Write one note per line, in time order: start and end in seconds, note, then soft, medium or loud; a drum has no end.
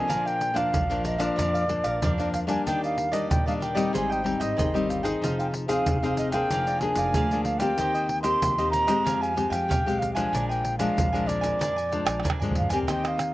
0.00 0.51 F3 medium
0.00 0.51 A#3 medium
0.00 0.52 D4 medium
0.00 0.28 G#5 medium
0.08 0.65 A#1 medium
0.08 0.70 A#2 medium
0.08 0.23 D4 medium
0.08 0.24 A#4 medium
0.08 0.24 D5 medium
0.08 0.24 F5 medium
0.08 pandeiro medium
0.08 shaker medium
0.08 surdo soft
0.25 0.40 A#4 soft
0.25 0.40 D5 soft
0.25 0.40 F5 soft
0.25 0.59 G5 medium
0.25 pandeiro soft
0.25 shaker soft
0.40 muted cavaquinho stroke soft
0.40 pandeiro medium
0.40 shaker medium
0.54 0.72 F3 medium
0.54 0.83 A#3 medium
0.54 0.83 D4 medium
0.54 0.88 A#4 medium
0.54 0.88 D5 medium
0.54 0.87 F5 medium
0.54 1.05 F5 medium
0.54 pandeiro medium
0.54 shaker medium
0.54 surdo soft
0.73 1.28 A#1 medium
0.73 0.88 F3 medium
0.73 pandeiro medium
0.73 shaker medium
0.73 surdo loud
0.90 1.17 F3 medium
0.90 1.17 A#3 medium
0.90 1.17 D4 medium
0.90 1.03 A#4 soft
0.90 1.04 D5 soft
0.90 1.05 F5 soft
0.90 pandeiro soft
0.90 shaker soft
1.04 1.20 D4 soft
1.04 1.19 A#4 soft
1.04 1.19 D5 soft
1.04 1.22 D#5 medium
1.04 1.17 F5 soft
1.04 pandeiro medium
1.04 shaker medium
1.18 1.64 F3 medium
1.18 1.64 A#3 medium
1.18 1.64 D4 medium
1.18 1.36 A#4 medium
1.18 1.36 D5 medium
1.18 2.33 D5 medium
1.18 1.35 F5 medium
1.18 pandeiro medium
1.18 shaker medium
1.18 surdo soft
1.36 1.79 F2 medium
1.36 1.98 A#2 medium
1.36 1.52 D4 medium
1.36 1.52 A#4 medium
1.36 1.53 D5 medium
1.36 1.53 F5 medium
1.36 pandeiro medium
1.36 shaker medium
1.36 surdo medium
1.54 1.68 A#4 soft
1.54 1.68 D5 soft
1.54 1.68 F5 soft
1.54 pandeiro soft
1.54 shaker soft
1.68 2.01 F3 soft
1.68 2.13 A#3 medium
1.68 2.13 D4 medium
1.68 muted cavaquinho stroke soft
1.68 pandeiro medium
1.68 surdo soft
1.84 1.99 A#1 medium
1.84 2.01 A#4 soft
1.84 2.00 D5 medium
1.84 2.00 F5 medium
1.84 pandeiro medium
1.84 shaker medium
2.02 2.57 F2 medium
2.02 2.17 F3 medium
2.02 2.17 D4 medium
2.02 2.17 A#4 medium
2.02 2.18 D5 medium
2.02 2.18 F5 medium
2.02 pandeiro medium
2.02 shaker medium
2.02 surdo medium
2.18 2.45 F3 soft
2.18 2.45 A#3 medium
2.18 2.46 D4 medium
2.18 2.48 A#4 soft
2.18 2.48 D5 soft
2.18 2.47 F5 soft
2.18 pandeiro soft
2.18 shaker soft
2.34 2.40 F5 medium
2.34 pandeiro medium
2.34 shaker medium
2.34 surdo soft
2.47 3.08 G3 medium
2.47 3.08 A#3 medium
2.47 3.08 D4 medium
2.47 2.65 A#4 soft
2.47 2.64 D5 soft
2.47 2.64 F5 soft
2.47 2.65 G#5 medium
2.47 pandeiro medium
2.47 shaker medium
2.47 surdo soft
2.66 3.21 D#2 medium
2.66 3.28 D#3 medium
2.66 2.81 D4 medium
2.66 2.81 G4 medium
2.66 2.82 D5 medium
2.66 2.82 D#5 medium
2.66 2.81 G5 medium
2.66 pandeiro medium
2.66 shaker medium
2.66 surdo soft
2.83 2.97 G4 soft
2.83 2.97 D5 soft
2.83 2.97 D#5 soft
2.83 3.14 F5 medium
2.83 pandeiro soft
2.83 shaker soft
2.98 muted cavaquinho stroke soft
2.98 pandeiro medium
3.12 3.40 G3 medium
3.12 3.40 A#3 medium
3.12 3.41 D4 medium
3.12 3.45 G4 soft
3.12 3.44 D5 medium
3.12 3.29 D#5 medium
3.12 3.45 D#5 medium
3.12 pandeiro medium
3.12 shaker medium
3.12 surdo soft
3.30 3.85 D#2 medium
3.30 3.92 A#2 medium
3.30 3.45 G5 medium
3.30 pandeiro medium
3.30 shaker medium
3.30 surdo loud
3.46 3.74 G3 medium
3.46 3.74 A#3 medium
3.46 3.74 D4 medium
3.46 3.60 G4 soft
3.46 3.61 D5 soft
3.46 3.61 D#5 soft
3.46 3.54 F5 medium
3.46 pandeiro soft
3.46 shaker soft
3.60 3.76 D4 soft
3.60 3.75 G4 soft
3.60 3.73 D5 soft
3.60 3.75 D#5 soft
3.60 3.92 G5 medium
3.60 pandeiro medium
3.75 4.20 G3 medium
3.75 4.20 C4 medium
3.75 4.20 D#4 medium
3.75 3.92 G4 medium
3.75 3.91 D5 medium
3.75 3.92 D#5 medium
3.75 pandeiro medium
3.75 shaker medium
3.75 surdo soft
3.93 4.36 G#1 medium
3.93 4.55 G#2 medium
3.93 4.08 G#4 medium
3.93 4.09 C5 medium
3.93 4.09 D#5 medium
3.93 4.08 G5 medium
3.93 4.14 G#5 medium
3.93 pandeiro medium
3.93 shaker medium
3.93 surdo medium
4.10 4.23 C5 soft
4.10 4.23 D#5 soft
4.10 4.23 G5 soft
4.10 4.42 G5 medium
4.10 pandeiro soft
4.10 shaker soft
4.24 4.68 G3 soft
4.24 4.69 C4 soft
4.24 4.69 D#4 medium
4.24 muted cavaquinho stroke soft
4.24 pandeiro medium
4.24 surdo soft
4.40 4.55 G#1 medium
4.40 4.56 C5 soft
4.40 4.56 D#5 medium
4.40 4.91 D#5 medium
4.40 4.56 G5 medium
4.40 pandeiro medium
4.40 shaker medium
4.57 5.13 G1 medium
4.57 5.19 D#3 medium
4.57 4.72 G#4 medium
4.57 4.73 C5 medium
4.57 4.73 D#5 medium
4.57 4.73 G5 medium
4.57 pandeiro medium
4.57 shaker medium
4.57 surdo medium
4.74 5.01 G3 medium
4.74 5.01 C4 medium
4.74 5.02 D#4 medium
4.74 5.04 C5 soft
4.74 5.03 D#5 soft
4.74 5.02 G5 soft
4.74 pandeiro soft
4.74 shaker soft
4.90 5.06 F5 medium
4.90 pandeiro medium
4.90 shaker medium
5.03 5.64 C4 medium
5.03 5.64 D#4 medium
5.03 5.64 G#4 medium
5.03 5.21 C5 soft
5.03 5.20 D#5 soft
5.03 5.20 G5 soft
5.03 pandeiro medium
5.03 shaker medium
5.03 surdo soft
5.21 5.77 F1 medium
5.21 5.83 F3 medium
5.21 5.37 D#4 medium
5.21 5.38 G#4 medium
5.21 5.38 C5 medium
5.21 5.38 F5 medium
5.21 pandeiro medium
5.21 shaker medium
5.21 surdo soft
5.39 5.53 G#4 soft
5.39 5.53 C5 soft
5.39 5.54 F5 soft
5.39 5.47 G5 medium
5.39 pandeiro soft
5.39 shaker soft
5.53 muted cavaquinho stroke soft
5.53 pandeiro medium
5.68 5.96 C4 medium
5.68 5.96 D#4 medium
5.68 5.97 G#4 medium
5.68 6.01 G#4 medium
5.68 6.01 C5 medium
5.68 6.14 F5 medium
5.68 6.00 F5 medium
5.68 pandeiro medium
5.68 shaker medium
5.68 surdo soft
5.86 6.41 F1 medium
5.86 6.48 C3 medium
5.86 pandeiro medium
5.86 shaker medium
5.86 surdo medium
6.03 6.30 C4 medium
6.03 6.30 D#4 medium
6.03 6.30 G#4 medium
6.03 6.18 G#4 soft
6.03 6.18 C5 soft
6.03 6.18 F5 soft
6.03 pandeiro soft
6.03 shaker soft
6.17 6.33 D#4 soft
6.17 6.34 G#4 soft
6.17 6.33 C5 soft
6.17 6.31 D#5 medium
6.17 6.32 F5 medium
6.17 pandeiro medium
6.17 shaker medium
6.32 6.77 A#3 medium
6.32 6.77 D4 medium
6.32 6.77 G#4 medium
6.32 6.50 G#4 medium
6.32 6.49 C5 medium
6.32 6.49 F5 medium
6.32 6.80 G5 medium
6.32 pandeiro medium
6.32 shaker medium
6.32 surdo soft
6.50 6.91 F1 medium
6.50 7.11 F3 medium
6.50 6.65 G#4 medium
6.50 6.66 A#4 medium
6.50 6.66 D5 medium
6.50 6.66 F5 medium
6.50 pandeiro medium
6.50 shaker medium
6.50 surdo medium
6.67 6.80 A#4 soft
6.67 6.81 D5 soft
6.67 6.80 F5 soft
6.67 pandeiro soft
6.67 shaker soft
6.79 7.25 A#3 soft
6.79 7.25 D4 medium
6.79 7.25 G#4 medium
6.79 7.43 G#5 loud
6.79 muted cavaquinho stroke soft
6.79 pandeiro medium
6.79 surdo soft
6.95 7.11 F1 medium
6.95 7.13 A#4 medium
6.95 7.13 D5 medium
6.95 7.13 F5 medium
6.95 pandeiro medium
6.95 shaker medium
7.14 7.69 D2 medium
7.14 7.76 F3 medium
7.14 7.29 G#4 medium
7.14 7.29 A#4 medium
7.14 7.30 D5 medium
7.14 7.30 F5 medium
7.14 pandeiro medium
7.14 shaker medium
7.14 surdo loud
7.31 7.58 A#3 medium
7.31 7.59 D4 medium
7.31 7.59 G#4 medium
7.31 7.60 A#4 soft
7.31 7.58 D5 soft
7.31 7.60 F5 soft
7.31 pandeiro soft
7.31 shaker soft
7.44 7.60 F5 medium
7.44 pandeiro medium
7.44 surdo soft
7.59 8.20 A#3 medium
7.59 8.21 C4 medium
7.59 8.21 G4 medium
7.59 7.77 A#4 soft
7.59 7.76 D5 soft
7.59 7.76 F5 soft
7.59 8.22 G5 loud
7.59 pandeiro medium
7.59 shaker medium
7.59 surdo soft
7.78 8.32 D#2 medium
7.78 8.39 D#3 medium
7.78 7.93 D#4 medium
7.78 7.93 G4 medium
7.78 7.93 C5 medium
7.78 7.93 D#5 medium
7.78 pandeiro medium
7.78 shaker medium
7.78 surdo medium
7.94 8.07 G4 soft
7.94 8.08 C5 soft
7.94 8.08 D#5 soft
7.94 pandeiro soft
7.94 shaker soft
8.08 muted cavaquinho stroke soft
8.08 pandeiro medium
8.22 8.51 A#3 medium
8.22 8.52 C4 medium
8.22 8.52 G4 medium
8.22 8.56 G4 soft
8.22 8.56 C5 medium
8.22 8.55 D#5 medium
8.22 8.69 C6 loud
8.22 pandeiro medium
8.22 shaker medium
8.22 surdo soft
8.42 8.97 D#2 medium
8.42 9.03 A#2 medium
8.42 pandeiro medium
8.42 shaker medium
8.42 surdo loud
8.58 8.85 A#3 soft
8.58 8.85 C4 medium
8.58 8.85 G4 medium
8.58 8.72 G4 soft
8.58 8.72 C5 soft
8.58 8.72 D#5 soft
8.58 pandeiro soft
8.58 shaker soft
8.71 8.88 D#4 soft
8.71 8.88 G4 soft
8.71 8.88 C5 medium
8.71 8.86 D#5 soft
8.71 9.23 A#5 loud
8.71 pandeiro medium
8.71 shaker medium
8.87 9.32 G#3 medium
8.87 9.32 C4 medium
8.87 9.04 G4 medium
8.87 9.32 G4 medium
8.87 9.04 C5 medium
8.87 9.03 D#5 medium
8.87 pandeiro medium
8.87 shaker medium
8.87 surdo soft
9.04 9.46 F2 medium
9.04 9.67 F3 medium
9.04 9.20 G4 medium
9.04 9.20 G#4 medium
9.04 9.20 F5 medium
9.04 9.20 G#5 medium
9.04 pandeiro medium
9.04 shaker medium
9.04 surdo medium
9.21 9.35 G4 soft
9.21 9.35 F5 soft
9.21 9.36 G#5 soft
9.21 9.53 G#5 medium
9.21 pandeiro soft
9.21 shaker soft
9.36 9.80 G#3 soft
9.36 9.80 C4 soft
9.36 9.80 G4 medium
9.36 muted cavaquinho stroke soft
9.36 pandeiro medium
9.36 surdo soft
9.50 9.66 F2 medium
9.50 9.68 G4 soft
9.50 9.67 F5 medium
9.50 10.00 G5 medium
9.50 9.67 G#5 medium
9.50 pandeiro medium
9.50 shaker medium
9.68 10.24 B1 medium
9.68 9.84 G4 medium
9.68 9.84 G#4 medium
9.68 9.84 F5 medium
9.68 9.85 G#5 medium
9.68 pandeiro medium
9.68 shaker medium
9.68 surdo loud
9.86 10.13 G#3 medium
9.86 10.13 C4 medium
9.86 10.13 G4 medium
9.86 10.15 G4 soft
9.86 10.14 F5 soft
9.86 pandeiro soft
9.86 shaker soft
9.99 10.14 F5 medium
9.99 pandeiro medium
9.99 shaker medium
9.99 surdo soft
10.14 10.75 F3 medium
10.14 10.76 G#3 medium
10.14 10.76 D4 medium
10.14 10.32 G4 soft
10.14 10.31 F5 soft
10.14 10.46 G#5 medium
10.14 10.31 G#5 soft
10.14 pandeiro medium
10.14 shaker medium
10.14 surdo soft
10.33 10.87 A#1 medium
10.33 10.94 A#2 medium
10.33 10.48 D4 medium
10.33 10.48 A#4 medium
10.33 10.49 D5 medium
10.33 10.48 G#5 medium
10.33 pandeiro medium
10.33 shaker medium
10.33 surdo medium
10.49 10.63 A#4 soft
10.49 10.63 D5 soft
10.49 10.78 G5 medium
10.49 10.63 G#5 soft
10.49 pandeiro soft
10.49 shaker soft
10.64 muted cavaquinho stroke soft
10.64 pandeiro medium
10.79 11.07 F3 medium
10.79 11.07 G#3 medium
10.79 11.07 D4 medium
10.79 11.12 A#4 soft
10.79 11.11 D5 medium
10.79 11.29 F5 medium
10.79 11.11 G#5 medium
10.79 pandeiro medium
10.79 shaker medium
10.79 surdo soft
10.97 11.51 A#1 medium
10.97 11.58 F2 medium
10.97 pandeiro medium
10.97 shaker medium
10.97 surdo loud
11.13 11.72 F3 medium
11.13 11.72 G#3 medium
11.13 11.72 D4 medium
11.13 11.25 A#4 soft
11.13 11.26 D5 soft
11.13 11.27 G#5 soft
11.13 pandeiro soft
11.13 shaker soft
11.26 11.42 D4 soft
11.26 11.42 A#4 soft
11.26 12.28 D5 medium
11.26 11.41 D5 soft
11.26 11.40 G#5 soft
11.26 pandeiro medium
11.26 shaker medium
11.41 11.59 A#4 medium
11.41 11.58 D5 medium
11.41 11.58 G#5 medium
11.41 pandeiro medium
11.41 shaker medium
11.41 surdo soft
11.59 12.02 F2 medium
11.59 12.21 A#2 medium
11.59 11.75 D4 medium
11.59 11.75 A#4 medium
11.59 11.76 D5 medium
11.59 11.75 G#5 medium
11.59 pandeiro medium
11.59 shaker medium
11.59 surdo medium
11.76 11.91 A#4 soft
11.76 11.91 D5 soft
11.76 11.91 G#5 soft
11.76 pandeiro soft
11.76 shaker soft
11.91 12.23 F3 medium
11.91 12.23 G#3 medium
11.91 12.23 D4 soft
11.91 muted cavaquinho stroke soft
11.91 pandeiro medium
11.91 surdo soft
12.05 12.21 A#1 medium
12.05 12.22 A#4 soft
12.05 12.22 D5 medium
12.05 12.22 G#5 medium
12.05 pandeiro medium
12.05 tamborim medium
12.05 shaker medium
12.20 12.39 D4 medium
12.20 12.39 A#4 medium
12.20 tamborim medium
12.24 12.79 F2 medium
12.24 12.86 F2 soft
12.24 12.39 D5 medium
12.24 12.38 G#5 medium
12.24 pandeiro medium
12.24 shaker medium
12.24 surdo medium
12.30 tamborim medium
12.40 12.68 F3 medium
12.40 12.69 G#3 medium
12.40 12.70 A#4 soft
12.40 12.69 D5 soft
12.40 12.68 G#5 soft
12.40 surdo medium
12.40 pandeiro soft
12.40 shaker soft
12.44 12.69 D4 medium
12.51 surdo loud
12.55 12.72 F5 medium
12.55 pandeiro medium
12.55 surdo soft
12.61 surdo medium
12.69 13.31 A#3 medium
12.69 13.31 C4 medium
12.69 13.32 G4 medium
12.69 12.87 A#4 soft
12.69 12.86 D5 soft
12.69 12.86 G#5 soft
12.69 12.79 G#5 medium
12.69 pandeiro medium
12.69 shaker medium
12.69 surdo medium
12.83 surdo medium
12.87 13.34 D#2 medium
12.87 13.34 D#3 medium
12.87 13.03 D#4 medium
12.87 13.03 G4 medium
12.87 13.03 C5 medium
12.87 13.02 D#5 medium
12.87 13.05 G5 medium
12.87 pandeiro medium
12.87 tamborim medium
12.87 shaker medium
12.87 surdo soft
13.04 13.17 G4 soft
13.04 13.17 C5 soft
13.04 13.18 D#5 soft
13.04 13.34 F5 medium
13.04 pandeiro soft
13.04 tamborim medium
13.04 shaker soft
13.18 muted cavaquinho stroke soft
13.18 pandeiro medium
13.18 tamborim medium
13.18 shaker medium